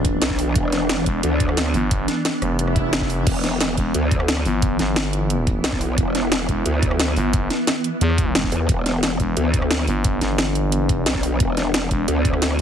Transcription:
Already playing: fm bass G1, synth drone E3 B3 D4
0.05 kick, closed hi-hat
0.22 wobble bass B1, snare, closed hi-hat
0.30 kick, snare
0.39 open hi-hat
0.56 wobble bass E1, kick, closed hi-hat
0.72 snare, closed hi-hat
0.89 wobble bass E1, snare, closed hi-hat
1.06 fm bass E1, kick, closed hi-hat
1.23 wobble bass D2, closed hi-hat
1.40 kick, closed hi-hat
1.49 cross-stick
1.57 snare, closed hi-hat
1.66 cross-stick
1.74 fm bass G1, open hi-hat
1.91 kick, closed hi-hat
2.08 snare, closed hi-hat
2.25 snare, closed hi-hat
2.42 fm bass F1, cross-stick, closed hi-hat
2.59 closed hi-hat, swell
2.67 cross-stick
2.76 kick, closed hi-hat
2.93 snare, closed hi-hat
3.01 kick, snare
3.10 open hi-hat
3.27 wobble bass E1, synth drone E4, kick, closed hi-hat, crash
3.44 snare, closed hi-hat
3.60 wobble bass E1, snare, closed hi-hat
3.77 fm bass E1, kick, closed hi-hat
3.94 wobble bass D2, closed hi-hat
4.11 kick, closed hi-hat
4.20 cross-stick
4.28 snare, closed hi-hat
4.37 cross-stick
4.45 fm bass G1, open hi-hat
4.62 kick, closed hi-hat
4.79 fm bass G1, snare, closed hi-hat
4.96 snare, closed hi-hat
5.13 closed hi-hat
5.30 closed hi-hat
5.47 kick, closed hi-hat
5.64 wobble bass B1, snare, closed hi-hat
5.72 kick, snare
5.81 open hi-hat
5.98 wobble bass E1, kick, closed hi-hat
6.15 snare, closed hi-hat
6.32 wobble bass E1, snare, closed hi-hat
6.49 fm bass E1, kick, closed hi-hat
6.66 wobble bass D2, closed hi-hat
6.83 kick, closed hi-hat
6.91 cross-stick
7.00 snare, closed hi-hat
7.08 cross-stick
7.16 fm bass G1, open hi-hat
7.33 kick, closed hi-hat
7.50 snare, closed hi-hat
7.67 snare, closed hi-hat
7.84 closed hi-hat
8.01 fm bass E2, closed hi-hat
8.10 cross-stick
8.18 kick, closed hi-hat
8.35 fm bass E1, snare, closed hi-hat
8.44 kick, snare
8.52 wobble bass E2, open hi-hat
8.69 wobble bass E1, synth drone D4, kick, closed hi-hat
8.86 snare, closed hi-hat
9.03 wobble bass E1, snare, closed hi-hat
9.20 fm bass E1, kick, closed hi-hat
9.37 wobble bass D2, closed hi-hat
9.54 kick, closed hi-hat
9.62 cross-stick
9.71 snare, closed hi-hat
9.79 cross-stick
9.87 fm bass G1, open hi-hat
10.04 kick, closed hi-hat
10.21 fm bass G1, snare, closed hi-hat
10.38 snare, closed hi-hat
10.55 closed hi-hat
10.72 closed hi-hat
10.81 fm bass F#1
10.89 kick, closed hi-hat
11.06 wobble bass B1, snare, closed hi-hat
11.15 kick, snare
11.23 open hi-hat
11.40 wobble bass E1, kick, closed hi-hat
11.57 snare, closed hi-hat
11.74 wobble bass E1, snare, closed hi-hat
11.91 fm bass E1, kick, closed hi-hat
12.08 wobble bass D2, closed hi-hat
12.25 kick, closed hi-hat
12.33 cross-stick
12.42 snare, closed hi-hat
12.50 cross-stick

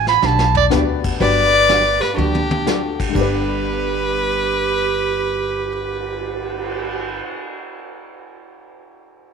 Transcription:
Already playing: upright bass A1
0.07 clarinet B5, snare
0.22 upright bass B1, hollow-body jazz guitar D3 F#3 B3 D4 G4, clarinet A5, snare
0.39 snare
0.55 clarinet D5, floor tom
0.70 upright bass D2, hollow-body jazz guitar D3 F#3 B3 D4 G4, honky-tonk piano B3 D4 F#4 G4 B4, snare, hi-hat pedal
1.04 kick, crash
1.20 upright bass G1, hollow-body jazz guitar D3 F#3 B3 D4 G4, honky-tonk piano D4 F#4 G4 B4, clarinet B4, fiddle D5, brush sweep, kick
1.69 hollow-body jazz guitar D3 F#3 B3 D4 G4, snare, hi-hat pedal
2.00 clarinet G4, fiddle B4, snare
2.13 upright bass D2, clarinet D4, fiddle F#4 G4
2.17 hollow-body jazz guitar D3 F#3 B3 D4 G4, clarinet D4, high tom
2.35 high tom
2.51 high tom
2.66 hollow-body jazz guitar D3 F#3 B3 D4 G4, honky-tonk piano D4 F#4 G4 A4, snare, hi-hat pedal
3.00 kick, crash
3.09 honky-tonk piano G2 D3
3.14 upright bass G1, hollow-body jazz guitar G2 D3 B3 D4 G4, clarinet G4, honky-tonk piano A4, fiddle B4, kick, crash
3.21 honky-tonk piano B4
3.48 cymbal swell

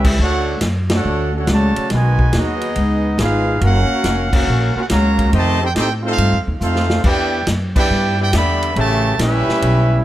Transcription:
Already playing: upright bass C#2, trombone section G3 C#4 E4, trumpet section C#4 G4 B4 E5
0.05 kick, crash
0.19 upright bass D2, trombone section A3 D4 F#4, trumpet section D4 A4 C#5 F#5
0.61 upright bass F#2, snare, hi-hat pedal, ride
0.90 trombone section A3 D4 F#4, trumpet section A4 F#5, snare, ride
0.94 trumpet section D4 C#5
1.04 upright bass D2
1.35 trombone section A3 C#4 F#4, trumpet section D4 A4 C#5 F#5
1.47 upright bass C#2, trombone section C#3 F#3 A3, trumpet section A5, snare, hi-hat pedal, ride
1.51 trumpet section F#4 C#5 D5
1.76 muted upright bass stroke, ride
1.90 upright bass B1, trombone section B2 D#3 G#3, trumpet section F#4 B4 D#5 G#5, snare, ride
2.19 kick
2.33 upright bass D#2, trombone section F#3 B3 D#4, trumpet section B3 F#4 G#4 D#5, snare, hi-hat pedal, ride
2.61 ride
2.76 upright bass C#2, ride
3.18 upright bass G#1, trombone section G#3 B3 F4, trumpet section D#4 G#4 B4 F5, snare, hi-hat pedal, ride
3.61 upright bass F#1, trombone section A#3 C#4 F#4, trumpet section C#4 A#4 F5 F#5, ride
4.04 upright bass F1, snare, hi-hat pedal, ride
4.33 trombone section A#3 C#4 F#4, trumpet section C#4 A#4 F5 F#5, kick, crash
4.47 upright bass A#1
4.76 trombone section A#3 C#4 F#4, trumpet section C#4 F4 A#4 F#5, muted upright bass stroke
4.89 upright bass C#2, trombone section C#3 F#3 A#3, trumpet section F#4 C#5 F5 A#5, snare, hi-hat pedal, ride
5.19 kick, ride
5.32 upright bass F2, trombone section C3 D#3 A3, trumpet section G4 C5 D#5 A5, ride
5.61 trombone section C4 D#4 G4, trumpet section D#4 A4 C5 G5
5.75 upright bass A2, trombone section C4 D#4 G4, trumpet section D#4 A4 C5 G5, snare, hi-hat pedal, ride
6.03 trombone section A3 C4 F4, trumpet section C5
6.07 trumpet section D#4 A4 F5
6.18 upright bass G2, ride
6.32 upright bass F2
6.47 upright bass D#2
6.60 upright bass F2, trombone section A3 C4 F4, trumpet section D#4 A4 C5 F5, hi-hat pedal
6.76 snare
6.90 snare
7.04 upright bass E2, trombone section B3 D4 G4, trumpet section E4 B4 D5 G5, kick, crash
7.47 upright bass F#2, snare, hi-hat pedal, ride
7.76 trombone section B3 D4 G4, trumpet section E4 B4 D5 G5, kick, crash
7.90 upright bass G2
8.18 trombone section B3 D4 G4, trumpet section E4 B4 D5 G5
8.32 upright bass E2, trombone section D3 G3 B3, trumpet section G4 D5 E5 B5, snare, hi-hat pedal, ride
8.63 ride
8.74 upright bass A1, trombone section C#3 E3 A3, trumpet section G4 C#5 E5 A5, ride
9.18 upright bass A#1, trombone section G3 C#4 E4, trumpet section C#4 G4 B4 E5, snare, hi-hat pedal, ride
9.48 muted upright bass stroke, snare
9.62 upright bass B1, ride

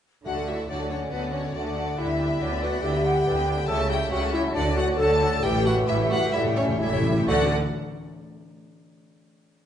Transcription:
0.25 double bass section D2, cello section D3, timpani D3, viola section F#3 F#4, bassoon A3, french horn section F#4, clarinet F#4, flute section D5, violin section F#5 A5
0.37 viola section A3 A4, violin section D5 F#5
0.47 viola section F#3 F#4, french horn section E4, clarinet E4, violin section E5 F#5 A5
0.59 viola section A3 A4, violin section D5 F#5
0.69 double bass section D2, cello section D3, bassoon F#3, viola section F#3 F#4, clarinet D4, french horn section D4, violin section D5 F#5 A5
0.80 viola section A3 A4, violin section D5 F#5
0.90 viola section F#3 F#4, french horn section C#4, clarinet C#4, violin section C#5 F#5 A5
1.01 viola section A3 A4, violin section D5 F#5
1.11 double bass section D2, cello section D3, bassoon F#3, viola section F#3 F#4, french horn section B3, clarinet B3, violin section B4 F#5 A5
1.23 viola section A3 A4, violin section D5 F#5
1.33 viola section F#3 F#4, french horn section C#4, clarinet C#4, violin section C#5 F#5 A5
1.44 viola section A3 A4, violin section D5 F#5
1.54 double bass section D2, cello section D3, viola section F#3 F#4, bassoon A3, clarinet D4, french horn section D4, violin section D5 F#5 A5, flute section F#5
1.65 viola section A3 A4, violin section D5 F#5
1.75 viola section F#3 F#4, violin section F#5 A5, flute section F#5
1.86 viola section A3 A4, violin section D5 F#5
1.97 double bass section D2, cello section D3, bassoon G3, viola section D4 E4, french horn section E4, clarinet E4, violin section D5 E5 G5, flute section E5
2.08 viola section B3 D4, violin section E5 B5
2.17 viola section D4 E4, violin section D5 G5
2.28 viola section B3 D4, violin section E5 B5
2.39 double bass section D2, cello section D3, bassoon F#3, viola section D4 E4, violin section D5 G5, flute section D5
2.50 viola section B3 D4, violin section E5 B5
2.60 bassoon E3, viola section D4 E4, french horn section F#4, clarinet F#4, violin section D5 F#5 G5
2.71 viola section B3 D4, violin section E5 B5
2.81 double bass section D2, cello section D3, bassoon D3, viola section D4 E4, french horn section G4, clarinet G4, violin section D5 G5, flute section E5
2.93 viola section B3 D4, violin section E5 B5
3.04 viola section D4 E4, violin section D5 G5, flute section F#5
3.13 viola section B3 D4, violin section E5 B5
3.26 double bass section D2, cello section D3, bassoon E3, viola section D4 E4, violin section D5 G5, flute section G5
3.36 viola section B3 D4, violin section E5 B5
3.46 bassoon D3, viola section D4 E4, violin section D5 G5
3.57 viola section B3 D4, violin section E5 B5
3.68 double bass section C#2, cello section C#3, bassoon C#3, viola section G3 E4, clarinet A4, french horn section A4, violin section C#5 G5 A5, flute section E5
3.79 viola section A3 C#4, violin section E5 A5
3.89 viola section G3 E4, clarinet G4, french horn section G4, violin section C#5 G5
4.01 viola section A3 C#4, violin section E5 A5
4.10 double bass section C#2, cello section C#3, bassoon F#3, viola section G3 E4, french horn section F#4, clarinet F#4, violin section C#5 F#5 G5
4.22 viola section A3 C#4, violin section E5 A5
4.33 viola section G3 E4, french horn section E4, clarinet E4, violin section C#5 E5 G5
4.43 viola section A3 C#4, violin section E5 A5
4.53 double bass section D2, cello section D3, viola section F#3 A4, french horn section D4, clarinet D4, flute section D5, violin section D5 F#5
4.65 viola section A3 F#4, violin section D5 A5
4.76 viola section F#3 A4, french horn section F#4, clarinet F#4, violin section F#5
4.87 viola section A3 F#4, violin section D5 A5
4.96 double bass section D2, cello section D3, viola section F#3 A4, french horn section A4, clarinet A4, flute section D5, violin section A5
5.01 violin section F#5
5.10 viola section A3 F#4, violin section D5 A5
5.21 viola section F#3 A4, violin section F#5
5.32 viola section A3 F#4, violin section D5 A5
5.43 double bass section A1, cello section A2, timpani A2, bassoon E3, viola section G3 A4, french horn section G4, clarinet G4, flute section E5, violin section E5 G5
5.52 timpani A2, viola section A3 G4
5.56 violin section C#5 G5
5.65 timpani A2, viola section G3 A4, french horn section F#4, clarinet F#4, violin section E5 F#5
5.75 timpani A2, viola section A3 G4, violin section C#5 G5
5.83 timpani A2
5.87 double bass section A1, cello section A2, timpani A2, viola section G3 A4, french horn section E4, clarinet E4, violin section E5
5.99 viola section A3 G4, violin section C#5 G5
6.06 timpani A2, clarinet F#4
6.11 timpani A2, viola section G3 A4, french horn section F#4, violin section E5 F#5
6.21 timpani A2, viola section A3 G4, violin section C#5 G5
6.29 timpani A2, clarinet E4
6.33 double bass section A1, cello section A2, timpani A2, viola section G3 A4, bassoon G3, french horn section E4, violin section E5
6.44 timpani A2, viola section A3 G4, violin section C#5 G5
6.53 timpani A2, viola section G3 A4, clarinet C#4
6.57 timpani A2, french horn section C#4, violin section C#5 E5
6.68 timpani A2, viola section A3 G4, violin section C#5 G5
6.77 double bass section A1, timpani A2, cello section A2, viola section G3 A4, bassoon A3, clarinet E4, flute section C#5, violin section E5
6.81 timpani A2, french horn section E4
6.92 timpani A2, viola section A3 G4, violin section C#5 G5
7.02 timpani A2, viola section G3
7.06 viola section A4, violin section E5
7.10 timpani A2
7.17 timpani A2, viola section A3 G4, violin section C#5 G5
7.27 double bass section D2, bassoon D3, cello section D3, timpani D3, viola section A3 A4, clarinet F#4, french horn section F#4, flute section D5, violin section D5 F#5

